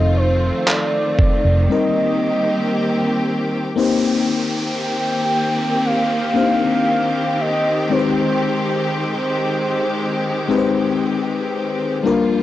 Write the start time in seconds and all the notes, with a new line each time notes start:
Already playing: F1 D#3 F3 A3 C4 D#4 F4 A4 D#5
0.17 C5
0.67 D5, clap, closed hi-hat
1.19 muted fingered electric bass stroke, kick
1.45 F1
1.69 G3 A#3 C4 D#4 G4 A#4 D#5
3.76 D#3 A#3 C4 D#4 G4 C5, downlifter
4.82 G5
5.85 F5
6.34 A#3 C4 D4 G4 C5
6.42 D#4
7.40 D#5
7.90 G#3 C4 D#4 G4 B4 C5
7.99 C5
8.95 C5
10.48 G#3 C4 D#4 G4 B4
10.58 C5
12.03 D3 F3 G3 A#3 D4 F4 A#4